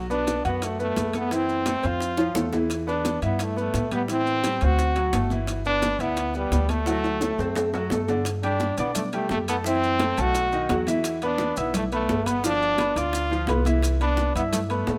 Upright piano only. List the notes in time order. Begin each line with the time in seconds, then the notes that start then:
0.10 B3 B4
0.45 F#4 F#5
0.79 B3 B4
1.14 A3 A4
1.31 E3 E4
1.66 A3 A4
1.83 C4 C5
2.18 F3 F4
2.35 A3 A4
2.52 E3 E4
2.87 B3 B4
3.23 E4 E5
3.56 B3 B4
3.92 G3 G4
4.09 E3 E4
4.44 G3 G4
4.63 C4 C5
4.96 F#3 F#4
5.14 A3 A4
5.31 E3 E4
5.66 B3 B4
6.00 E4 E5
6.35 B3 B4
6.70 A3 A4
6.87 F#3 F#4
7.21 A3 A4
7.39 C4 C5
7.74 F#3 F#4
7.91 A3 A4
8.09 D3 D4
8.43 G3 G4 G5
8.79 D4 D5 D6
9.13 G3 G4 G5
9.49 A3 A4 A5
9.65 E3 E4 E5
10.00 A3 A4 A5
10.18 A3 A4 A5
10.52 D#3 D#4 D#5
10.70 F#3 F#4 F#5
10.87 E3 E4 E5
11.23 B3 B4 B5
11.57 E4 E5 E6
11.92 B3 B4 B5
12.26 B3 B4 B5
12.44 F3 F4 F5
12.79 B3 B4 B5
12.96 D4 D5 D6
13.31 F3 F4 F5
13.48 B3 B4 B5
13.66 E3 E4 E5
14.01 B3 B4 B5
14.36 E4 E5 E6
14.70 B3 B4 B5